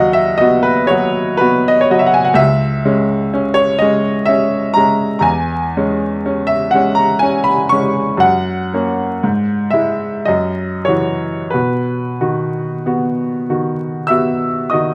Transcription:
0.00 2.31 D#2 medium
0.00 0.37 F#3 soft
0.00 0.38 F#4 soft
0.00 0.15 D#5 medium
0.00 2.06 F#5 medium
0.13 0.40 E5 medium
0.38 0.87 B3 soft
0.38 0.87 F#4 soft
0.38 0.64 D#5 medium
0.63 0.89 B4 medium
0.87 1.37 F#3 soft
0.87 1.37 F#4 medium
0.87 1.40 C#5 medium
1.37 1.87 B3 soft
1.37 1.86 F#4 soft
1.37 1.69 B4 medium
1.68 1.84 D#5 medium
1.81 1.93 C#5 medium
1.90 2.34 F#3 soft
1.90 2.35 F#4 medium
1.90 2.01 D#5 medium
1.99 2.09 E5 medium
2.06 2.17 F#5 medium
2.14 2.26 G#5 medium
2.25 2.37 F#5 medium
2.34 5.20 C#2 medium
2.34 3.56 E5 medium
2.85 3.29 G#3 soft
2.85 3.29 C#4 medium
3.34 3.78 C#4 soft
3.54 3.80 C#5 medium
3.79 4.25 G#3 soft
3.79 4.25 C#4 soft
3.79 4.28 D#5 medium
4.25 4.72 C#4 soft
4.25 4.75 E5 medium
4.74 5.22 G#3 soft
4.74 5.22 C#4 soft
4.74 5.17 A#5 medium
5.19 8.16 E2 medium
5.19 6.48 G#5 medium
5.19 5.26 A#5 medium
5.77 6.22 G#3 soft
5.77 6.22 C#4 soft
6.26 6.70 C#4 soft
6.47 6.73 E5 medium
6.71 7.19 G#3 soft
6.71 7.19 C#4 soft
6.71 6.97 F#5 medium
6.95 7.21 A#5 medium
7.19 7.68 C#4 soft
7.19 7.46 G#5 medium
7.44 7.71 B5 medium
7.69 8.19 G#3 soft
7.69 8.19 C#4 soft
7.69 8.22 C#6 medium
8.17 9.18 F#2 medium
8.17 9.73 F#5 medium
8.74 9.20 A#3 soft
8.74 9.20 C#4 soft
9.23 10.25 G#2 medium
9.70 10.24 G#3 soft
9.70 10.24 E4 soft
9.70 10.26 E5 medium
10.25 11.50 F#2 soft
10.25 10.86 D#5 medium
10.85 11.49 E3 soft
10.85 11.50 F#4 soft
10.85 11.52 C#5 medium
11.50 14.94 B2 soft
11.50 14.09 B4 medium
12.21 12.82 D#3 soft
12.21 12.82 F#4 soft
12.86 13.45 B3 soft
12.86 13.45 F#4 soft
13.50 14.07 D#3 soft
13.50 14.07 F#4 soft
14.07 14.69 B3 soft
14.07 14.69 F#4 soft
14.07 14.68 E5 medium
14.07 14.71 E6 medium
14.70 14.94 D#3 soft
14.70 14.94 F#4 soft
14.70 14.94 D#5 soft
14.70 14.94 D#6 soft

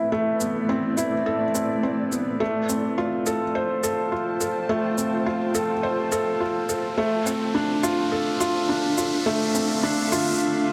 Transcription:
0.00 2.41 A3 medium
0.00 0.40 B3 medium
0.00 0.69 C4 medium
0.00 0.97 E4 medium
0.00 2.40 E4 medium
0.00 1.26 A4 medium
0.00 2.40 B4 medium
0.00 4.20 D5 medium
0.12 0.39 A3 loud
0.40 0.68 B3 medium
0.40 shaker medium
0.69 0.96 C4 medium
0.97 1.14 E4 medium
0.97 shaker medium
1.26 1.43 A4 medium
1.55 1.82 C4 medium
1.55 shaker medium
1.83 2.11 C4 medium
2.12 2.39 B3 medium
2.12 shaker medium
2.40 2.68 A3 loud
2.40 8.21 F4 medium
2.40 riser medium
2.65 8.80 C5 medium
2.65 8.49 A5 medium
2.69 2.96 C4 medium
2.69 shaker medium
2.79 8.04 G5 medium
2.98 3.25 F4 medium
3.26 3.43 A4 medium
3.26 shaker medium
3.55 3.82 C5 medium
3.83 4.11 A4 medium
3.83 shaker medium
4.12 4.39 F4 medium
4.41 4.68 A4 medium
4.41 shaker medium
4.69 4.96 A3 loud
4.98 5.25 C4 medium
4.98 shaker medium
5.26 5.54 F4 medium
5.55 5.71 A4 medium
5.55 shaker medium
5.83 6.11 C5 medium
6.12 6.39 A4 loud
6.12 shaker medium
6.40 6.68 F4 medium
6.69 6.96 A4 medium
6.69 shaker medium
6.97 7.25 A3 loud
6.97 10.73 D4 medium
7.22 10.73 A4 medium
7.22 10.73 E5 medium
7.26 7.53 C4 medium
7.26 shaker medium
7.55 7.82 D4 medium
7.83 8.00 F4 loud
7.83 shaker medium
7.94 10.73 F5 medium
8.12 8.39 A4 medium
8.40 8.68 F4 loud
8.40 shaker medium
8.69 8.96 D4 medium
8.98 9.25 F4 medium
8.98 shaker medium
9.26 9.53 A3 loud
9.55 9.82 C4 medium
9.55 shaker medium
9.83 10.11 D4 loud
10.12 10.28 F4 loud
10.12 shaker medium

